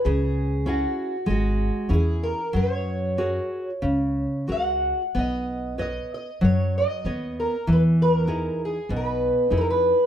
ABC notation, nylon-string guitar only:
X:1
M:4/4
L:1/8
Q:1/4=95
K:B
V:1 name="Nylon-string guitar"
C,2 [CEG]2 G,2 [CEG]2 | F,2 [FGA]2 C,2 [FGA]2 | B,2 [Bcd]2 F,2 [B,cd]2 | E,2 [DEG]2 B,,2 [DEG]2 |]